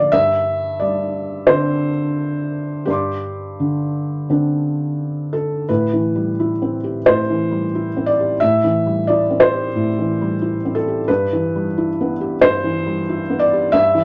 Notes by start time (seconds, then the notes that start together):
Already playing: D3 F3 D4 D5 F5
0.12 G2 E5
0.80 G3 D5
1.47 D3 C4 D4 C5
2.85 G2 G4 D5
2.90 C6 D6
3.60 D3
4.29 D3 C4 D4
5.33 A4
5.69 A2 B4
5.93 E3
6.15 G3
6.40 E4
6.62 C4
6.84 G4
7.06 A2 C5
7.30 E3
7.51 G3
7.75 E4
7.97 C4
8.06 D5
8.20 G4
8.40 A2 E5
8.64 E3
8.86 G3
9.07 E4 D5
9.30 C4
9.40 C5
9.53 G4
9.75 A2
9.99 E3
10.21 G3
10.42 E4
10.65 C4
10.75 A4
10.88 G4
11.08 G2 B4
11.33 E3
11.56 G3
11.78 E4
12.01 B3
12.21 G4
12.41 G2 C5
12.64 E3
12.86 G3
13.09 E4
13.30 B3
13.39 D5
13.53 G4
13.72 G2 E5
13.95 E3